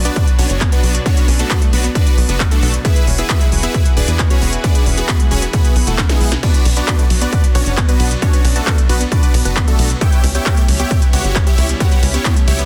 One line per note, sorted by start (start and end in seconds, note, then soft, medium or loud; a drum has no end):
0.00 2.81 F#3 medium
0.00 2.81 B3 medium
0.00 2.81 D4 medium
0.05 0.13 B3 loud
0.05 0.26 D4 medium
0.05 0.26 F#4 medium
0.05 0.26 B4 medium
0.05 0.26 D5 loud
0.05 closed hi-hat medium
0.16 0.21 B2 medium
0.16 kick loud
0.16 closed hi-hat medium
0.27 0.33 B4 medium
0.27 closed hi-hat medium
0.39 0.47 B1 medium
0.39 0.46 B3 medium
0.39 0.59 C#4 medium
0.39 0.59 D4 medium
0.39 0.59 F#4 medium
0.39 0.59 C#5 loud
0.39 open hi-hat loud
0.50 0.66 F#1 medium
0.50 closed hi-hat medium
0.61 0.66 B3 medium
0.61 kick loud
0.61 clap loud
0.61 closed hi-hat medium
0.72 0.93 B3 medium
0.72 0.77 B3 medium
0.72 0.93 D4 medium
0.72 0.93 F#4 medium
0.72 0.93 B4 loud
0.72 closed hi-hat medium
0.83 1.00 B1 loud
0.83 0.89 B3 medium
0.83 open hi-hat medium
0.95 1.00 B2 medium
0.95 closed hi-hat medium
1.06 1.11 B3 loud
1.06 1.26 C#4 medium
1.06 1.26 D4 medium
1.06 1.26 F#4 medium
1.06 1.26 C#5 loud
1.06 kick loud
1.06 closed hi-hat medium
1.17 1.22 B4 medium
1.17 closed hi-hat medium
1.28 1.44 B1 loud
1.28 1.33 C#4 medium
1.28 open hi-hat loud
1.39 1.60 A3 medium
1.39 1.42 B3 medium
1.39 1.60 D4 medium
1.39 1.60 F#4 medium
1.39 1.60 A4 loud
1.39 closed hi-hat medium
1.51 1.56 B3 medium
1.51 kick loud
1.51 clap loud
1.51 closed hi-hat medium
1.62 1.67 A3 medium
1.62 closed hi-hat medium
1.73 1.89 B1 medium
1.73 1.81 F#3 medium
1.73 1.87 B3 medium
1.73 1.87 D4 medium
1.73 1.87 F#4 medium
1.73 1.87 B4 medium
1.73 open hi-hat medium
1.84 1.92 B3 loud
1.84 closed hi-hat medium
1.95 2.00 B2 medium
1.95 2.16 D4 medium
1.95 2.16 F#4 medium
1.95 2.16 B4 medium
1.95 2.16 D5 loud
1.95 kick loud
1.95 closed hi-hat medium
2.07 2.12 B4 medium
2.07 closed hi-hat medium
2.18 2.26 B1 medium
2.18 2.25 B3 medium
2.18 open hi-hat loud
2.29 2.45 F#1 medium
2.29 2.43 B3 medium
2.29 2.43 D4 medium
2.29 2.43 F#4 medium
2.29 2.43 B4 medium
2.29 closed hi-hat medium
2.40 2.45 B3 medium
2.40 kick loud
2.40 clap loud
2.40 closed hi-hat medium
2.51 2.72 A3 medium
2.51 2.56 B3 medium
2.51 2.72 D4 medium
2.51 2.72 F#4 medium
2.51 2.72 A4 loud
2.51 closed hi-hat medium
2.62 2.79 B1 loud
2.62 2.68 B3 medium
2.62 open hi-hat medium
2.74 2.79 B2 medium
2.74 closed hi-hat medium
2.85 6.39 E3 medium
2.85 2.90 B3 loud
2.85 6.39 E4 medium
2.85 3.05 E4 medium
2.85 6.39 F#4 medium
2.85 6.39 G#4 medium
2.85 3.05 G#4 medium
2.85 6.39 B4 medium
2.85 3.05 B4 medium
2.85 3.05 E5 loud
2.85 kick loud
2.85 closed hi-hat medium
2.96 3.01 B4 medium
2.96 closed hi-hat medium
3.07 3.23 E1 loud
3.07 3.12 C#4 medium
3.07 open hi-hat loud
3.18 3.22 B3 medium
3.18 3.46 E4 medium
3.18 3.46 G#4 medium
3.18 3.46 B4 medium
3.18 3.46 E5 loud
3.18 closed hi-hat medium
3.30 3.35 B3 medium
3.30 kick loud
3.30 clap loud
3.30 closed hi-hat medium
3.41 3.46 G#3 medium
3.41 closed hi-hat medium
3.52 3.68 E1 medium
3.52 3.60 F#3 medium
3.52 open hi-hat loud
3.63 3.71 B3 loud
3.63 3.84 E4 medium
3.63 3.84 G#4 medium
3.63 3.84 B4 medium
3.63 3.84 E5 loud
3.63 closed hi-hat medium
3.74 3.80 B2 medium
3.74 kick loud
3.74 closed hi-hat medium
3.86 3.91 B4 medium
3.86 closed hi-hat medium
3.97 4.05 E1 loud
3.97 4.04 B3 medium
3.97 4.17 D4 medium
3.97 4.17 G#4 medium
3.97 4.17 B4 medium
3.97 4.17 D5 loud
3.97 open hi-hat loud
4.08 4.24 E2 medium
4.08 closed hi-hat medium
4.19 4.24 B3 medium
4.19 kick loud
4.19 clap loud
4.19 closed hi-hat medium
4.30 4.36 B3 medium
4.30 4.51 C#4 medium
4.30 4.51 F#4 medium
4.30 4.51 G#4 medium
4.30 4.51 C#5 loud
4.30 closed hi-hat medium
4.42 4.58 E1 loud
4.42 4.47 B3 medium
4.42 open hi-hat medium
4.53 4.58 B2 medium
4.53 closed hi-hat medium
4.64 4.69 B3 loud
4.64 4.85 D4 medium
4.64 4.85 G#4 medium
4.64 4.85 B4 medium
4.64 4.85 D5 loud
4.64 kick loud
4.64 closed hi-hat medium
4.75 4.80 B4 medium
4.75 closed hi-hat medium
4.86 5.03 E1 loud
4.86 4.91 C#4 medium
4.86 open hi-hat loud
4.97 5.18 B3 medium
4.97 5.01 B3 medium
4.97 5.18 F#4 medium
4.97 5.18 G#4 medium
4.97 5.18 B4 medium
4.97 closed hi-hat medium
5.09 5.14 B3 medium
5.09 kick loud
5.09 clap loud
5.09 closed hi-hat medium
5.20 5.25 G#3 medium
5.20 closed hi-hat medium
5.31 5.47 E1 medium
5.31 5.39 F#3 medium
5.31 5.45 C#4 medium
5.31 5.45 F#4 medium
5.31 5.45 G#4 medium
5.31 5.45 C#5 medium
5.31 open hi-hat medium
5.42 5.50 B3 loud
5.42 closed hi-hat medium
5.53 5.59 B2 medium
5.53 5.74 B3 medium
5.53 5.74 F#4 medium
5.53 5.74 G#4 medium
5.53 5.74 B4 loud
5.53 kick loud
5.53 closed hi-hat medium
5.65 5.70 B4 medium
5.65 closed hi-hat medium
5.76 5.84 B1 medium
5.76 5.84 B3 medium
5.76 open hi-hat loud
5.87 6.03 E1 loud
5.87 6.01 A3 medium
5.87 6.01 E4 medium
5.87 6.01 F#4 medium
5.87 6.01 A4 loud
5.87 closed hi-hat medium
5.98 6.03 B3 medium
5.98 kick loud
5.98 snare medium
5.98 clap loud
5.98 closed hi-hat medium
6.09 6.30 G#3 medium
6.09 6.15 B3 medium
6.09 6.30 B3 medium
6.09 6.30 E4 medium
6.09 6.30 G#4 loud
6.09 snare medium
6.09 closed hi-hat medium
6.21 6.37 B1 medium
6.21 6.26 B3 medium
6.21 open hi-hat medium
6.32 6.37 B2 medium
6.32 snare medium
6.32 closed hi-hat medium
6.43 9.98 F#3 medium
6.43 6.48 B3 loud
6.43 9.98 B3 medium
6.43 9.98 D4 medium
6.43 6.64 D4 medium
6.43 6.64 F#4 medium
6.43 6.64 B4 medium
6.43 6.64 D5 loud
6.43 kick loud
6.43 closed hi-hat medium
6.43 crash medium
6.54 6.59 B4 medium
6.54 closed hi-hat medium
6.65 6.82 B1 medium
6.65 6.71 C#4 medium
6.65 open hi-hat loud
6.65 ride medium
6.77 6.80 B3 medium
6.77 7.04 D4 medium
6.77 7.04 F#4 medium
6.77 7.04 B4 medium
6.77 7.04 D5 loud
6.77 closed hi-hat medium
6.88 6.93 B3 medium
6.88 kick loud
6.88 clap loud
6.88 closed hi-hat medium
6.99 7.04 A3 medium
6.99 closed hi-hat medium
7.10 7.26 B1 medium
7.10 7.18 F#3 medium
7.10 open hi-hat loud
7.10 ride medium
7.21 7.29 B3 loud
7.21 7.42 D4 medium
7.21 7.42 F#4 medium
7.21 7.42 B4 medium
7.21 7.42 D5 loud
7.21 closed hi-hat medium
7.33 7.38 B2 medium
7.33 kick loud
7.33 closed hi-hat medium
7.44 7.49 B4 medium
7.44 closed hi-hat medium
7.55 7.63 B1 loud
7.55 7.63 B3 medium
7.55 7.76 C#4 medium
7.55 7.76 D4 medium
7.55 7.76 F#4 medium
7.55 7.76 C#5 loud
7.55 open hi-hat loud
7.55 ride medium
7.66 7.82 F#1 medium
7.66 closed hi-hat medium
7.77 7.83 B3 medium
7.77 kick loud
7.77 clap loud
7.77 closed hi-hat medium
7.88 8.09 B3 medium
7.88 7.94 B3 medium
7.88 8.09 D4 medium
7.88 8.09 F#4 medium
7.88 8.09 B4 loud
7.88 closed hi-hat medium
8.00 8.16 B1 loud
8.00 8.05 B3 medium
8.00 open hi-hat medium
8.00 ride medium
8.11 8.16 B2 medium
8.11 closed hi-hat medium
8.22 8.27 B3 loud
8.22 8.43 C#4 medium
8.22 8.43 D4 medium
8.22 8.43 F#4 medium
8.22 8.43 C#5 loud
8.22 kick loud
8.22 closed hi-hat medium
8.33 8.38 B4 medium
8.33 closed hi-hat medium
8.44 8.61 B1 medium
8.44 8.50 C#4 medium
8.44 open hi-hat loud
8.44 ride medium
8.56 8.76 A3 medium
8.56 8.59 B3 medium
8.56 8.76 D4 medium
8.56 8.76 F#4 medium
8.56 8.76 A4 medium
8.56 closed hi-hat medium
8.67 8.72 B3 medium
8.67 kick loud
8.67 clap loud
8.67 closed hi-hat medium
8.78 8.83 A3 medium
8.78 closed hi-hat medium
8.89 9.06 B1 medium
8.89 8.97 F#3 medium
8.89 9.03 B3 medium
8.89 9.03 D4 medium
8.89 9.03 F#4 medium
8.89 9.03 B4 medium
8.89 open hi-hat loud
8.89 ride medium
9.01 9.08 B3 loud
9.01 closed hi-hat medium
9.12 9.17 B2 medium
9.12 9.32 D4 medium
9.12 9.32 F#4 medium
9.12 9.32 B4 medium
9.12 9.32 D5 loud
9.12 kick loud
9.12 closed hi-hat medium
9.23 9.28 B4 medium
9.23 closed hi-hat medium
9.34 9.42 B1 medium
9.34 9.42 B3 medium
9.34 open hi-hat loud
9.34 ride medium
9.45 9.61 F#1 medium
9.45 9.59 B3 medium
9.45 9.59 D4 medium
9.45 9.59 F#4 medium
9.45 9.59 B4 medium
9.45 closed hi-hat medium
9.56 9.62 B3 medium
9.56 kick loud
9.56 clap loud
9.56 closed hi-hat medium
9.68 9.88 A3 medium
9.68 9.73 B3 medium
9.68 9.88 D4 medium
9.68 9.88 F#4 medium
9.68 9.88 A4 loud
9.68 closed hi-hat medium
9.79 9.95 B1 loud
9.79 9.84 B3 medium
9.79 open hi-hat loud
9.79 ride medium
9.90 9.95 B2 medium
9.90 closed hi-hat medium
10.01 12.65 G3 medium
10.01 10.06 B3 loud
10.01 12.65 C#4 medium
10.01 12.65 E4 medium
10.01 10.22 G4 medium
10.01 10.22 C#5 medium
10.01 10.22 E5 medium
10.01 10.22 G5 loud
10.01 kick loud
10.01 closed hi-hat medium
10.12 10.18 B4 medium
10.12 closed hi-hat medium
10.24 10.40 C#2 loud
10.24 10.29 C#4 medium
10.24 open hi-hat loud
10.24 ride medium
10.35 10.38 B3 medium
10.35 10.62 G4 medium
10.35 10.62 C#5 medium
10.35 10.62 E5 medium
10.35 10.62 G5 loud
10.35 closed hi-hat medium
10.46 10.51 B3 medium
10.46 kick loud
10.46 clap loud
10.46 closed hi-hat medium
10.57 10.62 A3 medium
10.57 closed hi-hat medium
10.68 10.85 C#2 medium
10.68 10.76 F#3 medium
10.68 open hi-hat loud
10.68 ride medium
10.80 10.87 B3 loud
10.80 11.00 G4 medium
10.80 11.00 C#5 medium
10.80 11.00 E5 medium
10.80 11.00 G5 loud
10.80 closed hi-hat medium
10.91 10.96 B2 medium
10.91 kick loud
10.91 closed hi-hat medium
11.02 11.07 B4 medium
11.02 closed hi-hat medium
11.13 11.21 C#2 medium
11.13 11.21 B3 medium
11.13 11.34 F#4 medium
11.13 11.34 G4 medium
11.13 11.34 C#5 medium
11.13 11.34 F#5 loud
11.13 open hi-hat loud
11.13 ride medium
11.24 11.41 G1 medium
11.24 closed hi-hat medium
11.36 11.41 B3 medium
11.36 kick loud
11.36 clap loud
11.36 closed hi-hat medium
11.47 11.52 B3 medium
11.47 11.67 E4 medium
11.47 11.67 G4 medium
11.47 11.67 C#5 medium
11.47 11.67 E5 loud
11.47 closed hi-hat medium
11.58 11.74 C#2 loud
11.58 11.63 B3 medium
11.58 open hi-hat loud
11.58 ride medium
11.69 11.74 B2 medium
11.69 closed hi-hat medium
11.80 11.86 B3 loud
11.80 12.01 F#4 medium
11.80 12.01 G4 medium
11.80 12.01 C#5 medium
11.80 12.01 F#5 loud
11.80 kick loud
11.80 closed hi-hat medium
11.92 11.97 B4 medium
11.92 closed hi-hat medium
12.03 12.19 C#2 loud
12.03 12.08 C#4 medium
12.03 open hi-hat loud
12.03 ride medium
12.14 12.17 B3 medium
12.14 12.35 C#4 medium
12.14 12.35 E4 medium
12.14 12.35 G4 medium
12.14 12.35 C#5 medium
12.14 closed hi-hat medium
12.25 12.30 B3 medium
12.25 kick loud
12.25 clap loud
12.25 closed hi-hat medium
12.36 12.41 A3 medium
12.36 closed hi-hat medium
12.47 12.64 C#2 medium
12.47 12.55 F#3 medium
12.47 12.61 E4 medium
12.47 12.61 G4 medium
12.47 12.61 C#5 medium
12.47 12.61 E5 medium
12.47 open hi-hat loud
12.47 ride medium
12.59 12.65 B3 loud
12.59 closed hi-hat medium